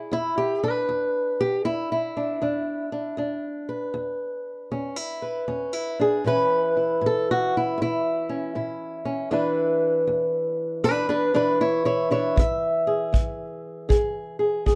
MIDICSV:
0, 0, Header, 1, 3, 480
1, 0, Start_track
1, 0, Tempo, 765306
1, 74, Time_signature, 4, 2, 24, 8
1, 9252, End_track
2, 0, Start_track
2, 0, Title_t, "Steel-string acoustic guitar"
2, 0, Program_c, 0, 25
2, 0, Note_on_c, 0, 64, 48
2, 0, Note_on_c, 0, 68, 48
2, 0, Note_on_c, 0, 74, 45
2, 72, Note_on_c, 0, 40, 78
2, 78, Note_off_c, 0, 68, 0
2, 80, Note_off_c, 0, 64, 0
2, 80, Note_on_c, 0, 64, 91
2, 91, Note_off_c, 0, 74, 0
2, 233, Note_off_c, 0, 64, 0
2, 236, Note_on_c, 0, 67, 82
2, 396, Note_off_c, 0, 67, 0
2, 398, Note_on_c, 0, 62, 45
2, 399, Note_on_c, 0, 71, 83
2, 521, Note_off_c, 0, 40, 0
2, 556, Note_on_c, 0, 40, 72
2, 878, Note_off_c, 0, 71, 0
2, 882, Note_on_c, 0, 67, 90
2, 1004, Note_off_c, 0, 40, 0
2, 1032, Note_off_c, 0, 67, 0
2, 1035, Note_on_c, 0, 64, 88
2, 1037, Note_on_c, 0, 40, 70
2, 1196, Note_off_c, 0, 64, 0
2, 1204, Note_on_c, 0, 64, 77
2, 1352, Note_off_c, 0, 62, 0
2, 1359, Note_on_c, 0, 62, 47
2, 1485, Note_off_c, 0, 40, 0
2, 1511, Note_off_c, 0, 62, 0
2, 1515, Note_on_c, 0, 40, 74
2, 1519, Note_on_c, 0, 62, 46
2, 1825, Note_off_c, 0, 62, 0
2, 1833, Note_on_c, 0, 62, 48
2, 1964, Note_off_c, 0, 40, 0
2, 1979, Note_off_c, 0, 62, 0
2, 1989, Note_on_c, 0, 40, 69
2, 1996, Note_on_c, 0, 62, 45
2, 2163, Note_off_c, 0, 64, 0
2, 2313, Note_on_c, 0, 71, 45
2, 2442, Note_off_c, 0, 40, 0
2, 2470, Note_on_c, 0, 40, 65
2, 2922, Note_off_c, 0, 40, 0
2, 2957, Note_on_c, 0, 40, 71
2, 2958, Note_on_c, 0, 61, 44
2, 3112, Note_off_c, 0, 61, 0
2, 3112, Note_on_c, 0, 64, 39
2, 3268, Note_off_c, 0, 71, 0
2, 3275, Note_on_c, 0, 71, 43
2, 3407, Note_off_c, 0, 40, 0
2, 3434, Note_off_c, 0, 64, 0
2, 3436, Note_on_c, 0, 40, 69
2, 3436, Note_on_c, 0, 61, 44
2, 3594, Note_off_c, 0, 61, 0
2, 3594, Note_on_c, 0, 64, 43
2, 3754, Note_off_c, 0, 62, 0
2, 3759, Note_off_c, 0, 64, 0
2, 3760, Note_on_c, 0, 62, 42
2, 3771, Note_on_c, 0, 68, 82
2, 3886, Note_off_c, 0, 40, 0
2, 3902, Note_off_c, 0, 71, 0
2, 3904, Note_off_c, 0, 62, 0
2, 3916, Note_on_c, 0, 45, 71
2, 3924, Note_on_c, 0, 52, 51
2, 3927, Note_off_c, 0, 68, 0
2, 3928, Note_on_c, 0, 61, 48
2, 3931, Note_on_c, 0, 64, 48
2, 3935, Note_on_c, 0, 71, 105
2, 4241, Note_off_c, 0, 64, 0
2, 4244, Note_on_c, 0, 64, 40
2, 4366, Note_off_c, 0, 45, 0
2, 4399, Note_on_c, 0, 45, 72
2, 4409, Note_off_c, 0, 71, 0
2, 4430, Note_on_c, 0, 69, 85
2, 4576, Note_off_c, 0, 69, 0
2, 4585, Note_on_c, 0, 66, 100
2, 4734, Note_off_c, 0, 66, 0
2, 4746, Note_off_c, 0, 64, 0
2, 4748, Note_on_c, 0, 64, 81
2, 4848, Note_off_c, 0, 45, 0
2, 4878, Note_on_c, 0, 45, 70
2, 4895, Note_off_c, 0, 64, 0
2, 4903, Note_on_c, 0, 64, 94
2, 5195, Note_off_c, 0, 61, 0
2, 5202, Note_on_c, 0, 61, 50
2, 5327, Note_off_c, 0, 45, 0
2, 5359, Note_off_c, 0, 64, 0
2, 5364, Note_on_c, 0, 45, 66
2, 5367, Note_on_c, 0, 64, 48
2, 5671, Note_off_c, 0, 61, 0
2, 5678, Note_on_c, 0, 61, 48
2, 5810, Note_off_c, 0, 45, 0
2, 5824, Note_off_c, 0, 61, 0
2, 5838, Note_off_c, 0, 52, 0
2, 5838, Note_on_c, 0, 40, 72
2, 5841, Note_on_c, 0, 52, 54
2, 5844, Note_on_c, 0, 62, 49
2, 5846, Note_off_c, 0, 64, 0
2, 5848, Note_on_c, 0, 64, 50
2, 5854, Note_on_c, 0, 71, 52
2, 6287, Note_off_c, 0, 40, 0
2, 6319, Note_on_c, 0, 40, 75
2, 6767, Note_off_c, 0, 40, 0
2, 6797, Note_off_c, 0, 62, 0
2, 6797, Note_off_c, 0, 71, 0
2, 6797, Note_on_c, 0, 40, 69
2, 6799, Note_on_c, 0, 62, 84
2, 6800, Note_on_c, 0, 71, 102
2, 6947, Note_off_c, 0, 62, 0
2, 6955, Note_off_c, 0, 71, 0
2, 6955, Note_on_c, 0, 62, 77
2, 6962, Note_on_c, 0, 71, 85
2, 7109, Note_off_c, 0, 62, 0
2, 7111, Note_off_c, 0, 52, 0
2, 7113, Note_on_c, 0, 52, 45
2, 7116, Note_on_c, 0, 62, 84
2, 7118, Note_off_c, 0, 71, 0
2, 7126, Note_on_c, 0, 71, 102
2, 7245, Note_off_c, 0, 40, 0
2, 7278, Note_off_c, 0, 62, 0
2, 7278, Note_off_c, 0, 64, 0
2, 7281, Note_off_c, 0, 71, 0
2, 7281, Note_on_c, 0, 40, 74
2, 7281, Note_on_c, 0, 64, 87
2, 7283, Note_on_c, 0, 73, 95
2, 7427, Note_off_c, 0, 64, 0
2, 7431, Note_off_c, 0, 73, 0
2, 7434, Note_on_c, 0, 64, 81
2, 7439, Note_on_c, 0, 73, 90
2, 7590, Note_off_c, 0, 64, 0
2, 7593, Note_on_c, 0, 62, 49
2, 7595, Note_off_c, 0, 73, 0
2, 7598, Note_on_c, 0, 64, 77
2, 7603, Note_on_c, 0, 73, 83
2, 7727, Note_off_c, 0, 40, 0
2, 7752, Note_on_c, 0, 40, 75
2, 7759, Note_off_c, 0, 64, 0
2, 7761, Note_off_c, 0, 73, 0
2, 7771, Note_off_c, 0, 62, 0
2, 7773, Note_on_c, 0, 76, 95
2, 8073, Note_on_c, 0, 68, 49
2, 8202, Note_off_c, 0, 40, 0
2, 8232, Note_on_c, 0, 40, 66
2, 8681, Note_off_c, 0, 40, 0
2, 8710, Note_on_c, 0, 40, 79
2, 8712, Note_off_c, 0, 68, 0
2, 8715, Note_on_c, 0, 68, 49
2, 9019, Note_off_c, 0, 68, 0
2, 9026, Note_on_c, 0, 68, 44
2, 9160, Note_off_c, 0, 40, 0
2, 9190, Note_off_c, 0, 68, 0
2, 9195, Note_on_c, 0, 40, 71
2, 9198, Note_on_c, 0, 68, 48
2, 9203, Note_off_c, 0, 76, 0
2, 9252, Note_off_c, 0, 40, 0
2, 9252, Note_off_c, 0, 52, 0
2, 9252, Note_off_c, 0, 68, 0
2, 9252, End_track
3, 0, Start_track
3, 0, Title_t, "Drums"
3, 7761, Note_on_c, 9, 36, 77
3, 7824, Note_off_c, 9, 36, 0
3, 8241, Note_on_c, 9, 36, 67
3, 8303, Note_off_c, 9, 36, 0
3, 8719, Note_on_c, 9, 36, 67
3, 8782, Note_off_c, 9, 36, 0
3, 9198, Note_on_c, 9, 36, 53
3, 9252, Note_off_c, 9, 36, 0
3, 9252, End_track
0, 0, End_of_file